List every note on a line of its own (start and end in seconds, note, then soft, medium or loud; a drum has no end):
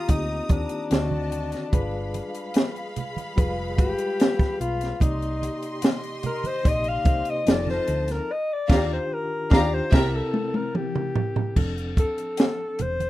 0.00 0.49 D#3 medium
0.00 0.08 A#3 medium
0.00 0.09 C4 medium
0.00 0.12 F4 loud
0.00 0.51 G4 medium
0.00 0.87 G4 medium
0.00 0.87 A#5 medium
0.00 0.87 D#6 medium
0.08 0.40 D2 medium
0.08 0.44 A#3 medium
0.08 0.44 C4 medium
0.08 0.43 D#4 medium
0.08 0.53 D#4 medium
0.08 0.45 F4 medium
0.08 kick medium
0.08 closed hi-hat medium
0.49 0.66 D#2 medium
0.49 0.90 D#3 medium
0.49 0.91 A#3 medium
0.49 0.90 C4 medium
0.49 2.56 D4 medium
0.49 0.92 G4 medium
0.49 kick medium
0.49 closed hi-hat medium
0.49 high conga medium
0.69 closed hi-hat medium
0.90 1.53 D2 medium
0.90 1.61 D3 medium
0.90 1.61 D#3 medium
0.90 1.61 C4 medium
0.90 1.71 F#4 medium
0.90 1.62 F#4 medium
0.90 1.71 D#5 medium
0.90 1.71 A5 medium
0.90 snare loud
0.90 closed hi-hat medium
0.90 muted conga soft
1.11 high conga medium
1.32 closed hi-hat medium
1.32 muted conga soft
1.52 snare soft
1.52 closed hi-hat soft
1.72 2.20 G1 medium
1.72 3.13 G3 medium
1.72 4.97 G#3 medium
1.72 3.13 F4 medium
1.72 3.13 G#4 medium
1.72 3.14 B4 medium
1.72 4.97 F5 medium
1.72 4.97 B5 medium
1.72 kick medium
1.72 closed hi-hat medium
1.72 muted conga soft
1.72 low conga medium
2.14 closed hi-hat medium
2.14 muted conga soft
2.14 high conga soft
2.35 closed hi-hat medium
2.54 snare loud
2.54 closed hi-hat medium
2.54 muted conga soft
2.76 closed hi-hat soft
2.96 closed hi-hat medium
2.96 low conga medium
3.17 closed hi-hat soft
3.17 high conga medium
3.36 3.79 F1 loud
3.36 3.72 G3 medium
3.36 3.72 F4 medium
3.36 3.72 G#4 medium
3.36 3.73 B4 loud
3.36 kick medium
3.36 closed hi-hat medium
3.36 muted conga soft
3.77 3.94 G1 medium
3.77 4.83 G3 medium
3.77 4.83 G#3 medium
3.77 4.83 F4 medium
3.77 4.57 G4 medium
3.77 4.84 B4 medium
3.77 kick medium
3.77 closed hi-hat medium
3.77 high conga medium
3.98 closed hi-hat medium
4.20 snare loud
4.20 closed hi-hat medium
4.39 kick medium
4.39 snare soft
4.39 closed hi-hat soft
4.39 high conga medium
4.60 4.91 B1 medium
4.60 5.03 F4 medium
4.60 closed hi-hat medium
4.60 muted conga soft
4.81 snare soft
4.81 closed hi-hat soft
5.00 5.48 C2 loud
5.00 6.41 C3 medium
5.00 6.41 A#3 medium
5.00 5.83 D#4 medium
5.00 6.42 D#4 medium
5.00 7.43 G4 medium
5.00 6.42 D5 medium
5.00 7.43 D#5 medium
5.00 7.43 C6 medium
5.00 kick medium
5.00 closed hi-hat medium
5.00 muted conga soft
5.00 low conga medium
5.22 closed hi-hat soft
5.42 closed hi-hat medium
5.42 high conga soft
5.63 closed hi-hat soft
5.82 snare loud
5.82 closed hi-hat medium
5.82 muted conga soft
6.03 closed hi-hat soft
6.23 6.48 A#4 medium
6.23 closed hi-hat medium
6.23 low conga medium
6.44 6.69 C5 medium
6.44 closed hi-hat soft
6.44 high conga medium
6.63 6.96 A#1 medium
6.63 6.99 C3 medium
6.63 7.00 A#3 medium
6.63 7.00 D#4 medium
6.63 7.00 D5 medium
6.63 kick medium
6.63 closed hi-hat medium
6.63 muted conga soft
6.68 6.90 D#5 loud
6.84 closed hi-hat soft
6.89 7.32 F5 medium
7.05 7.21 C2 medium
7.05 7.46 C3 medium
7.05 7.47 A#3 medium
7.05 7.46 D#4 medium
7.05 7.47 C5 medium
7.05 kick medium
7.05 closed hi-hat medium
7.05 high conga medium
7.25 closed hi-hat medium
7.30 7.52 D#5 medium
7.45 7.78 F1 loud
7.45 8.16 F3 medium
7.45 8.17 C4 medium
7.45 8.17 D#4 medium
7.45 8.27 F4 medium
7.45 8.17 A4 medium
7.45 8.27 D#5 medium
7.45 8.27 A5 medium
7.45 snare loud
7.45 closed hi-hat medium
7.45 muted conga soft
7.51 7.69 D5 loud
7.67 8.13 C5 medium
7.67 snare soft
7.67 high conga medium
7.88 8.19 D2 loud
7.88 closed hi-hat medium
8.08 8.34 A#4 medium
8.08 snare soft
8.08 closed hi-hat soft
8.32 8.54 D#5 loud
8.53 8.92 D5 medium
8.68 8.97 D#2 medium
8.68 8.97 D#3 loud
8.68 8.97 D4 loud
8.68 8.98 F4 loud
8.68 8.97 G4 loud
8.68 8.97 F5 loud
8.68 8.97 A#5 medium
8.68 kick loud
8.68 snare medium
8.68 crash medium
8.77 9.02 G4 loud
8.93 9.15 C5 medium
9.13 9.56 A#4 loud
9.50 9.79 D#2 loud
9.50 9.79 D#3 loud
9.50 9.79 D4 loud
9.50 9.80 F4 medium
9.50 9.79 G4 loud
9.50 9.75 D5 medium
9.50 9.80 F5 loud
9.50 9.80 A#5 loud
9.50 kick loud
9.50 snare loud
9.59 9.84 G4 medium
9.74 9.93 C5 medium
9.91 10.21 C2 loud
9.91 10.19 C3 loud
9.91 10.20 C4 loud
9.91 10.20 E4 loud
9.91 10.21 G4 loud
9.91 10.21 A#4 loud
9.91 10.20 E5 loud
9.91 10.20 A#5 medium
9.91 kick loud
9.91 snare loud
9.91 crash medium
9.95 10.17 A#4 medium
10.16 10.58 A4 medium
10.34 high tom medium
10.54 10.78 A#4 medium
10.54 high tom medium
10.75 11.57 G4 medium
10.75 mid tom medium
10.95 mid tom medium
11.15 floor tom loud
11.36 floor tom medium
11.55 12.03 F1 medium
11.55 12.96 F3 medium
11.55 12.96 C4 medium
11.55 12.97 D4 medium
11.55 12.97 A4 medium
11.55 kick medium
11.55 crash medium
11.55 low conga medium
11.78 closed hi-hat soft
11.97 12.84 A4 medium
11.97 kick medium
11.97 closed hi-hat medium
12.18 closed hi-hat soft
12.37 snare loud
12.37 closed hi-hat medium
12.79 13.10 E1 medium
12.79 13.10 C5 medium
12.79 closed hi-hat medium
12.79 muted conga soft
12.79 low conga medium
13.00 closed hi-hat soft
13.00 high conga medium